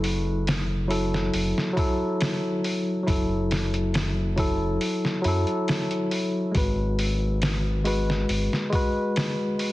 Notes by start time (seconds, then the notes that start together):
Already playing: F#1 F#3 E4 A4
0.04 open hi-hat
0.47 snare, open hi-hat
0.88 F#3 E4 A4, open hi-hat
1.14 snare
1.34 F#1, open hi-hat
1.58 snare
1.73 F#3 E4, kick
1.77 A4, open hi-hat
2.21 snare, open hi-hat
2.64 open hi-hat
3.04 F#3 E4, kick
3.08 F#1 A4, open hi-hat
3.51 snare, open hi-hat
3.74 closed hi-hat
3.94 snare, open hi-hat
4.36 F#3 E4 A4, kick, open hi-hat
4.81 open hi-hat
5.05 snare
5.22 F#2 F#3 E4, open hi-hat
5.28 A4
5.47 closed hi-hat
5.68 snare, open hi-hat
5.91 closed hi-hat
6.11 open hi-hat
6.52 G#1 G#3 F#4, kick, open hi-hat
6.57 B4
6.99 open hi-hat
7.42 snare, open hi-hat
7.84 G#3 F#4 B4, open hi-hat
8.10 snare
8.29 G#1, open hi-hat
8.53 snare
8.70 G#3 F#4, kick, open hi-hat
8.75 B4
9.16 snare, open hi-hat
9.59 open hi-hat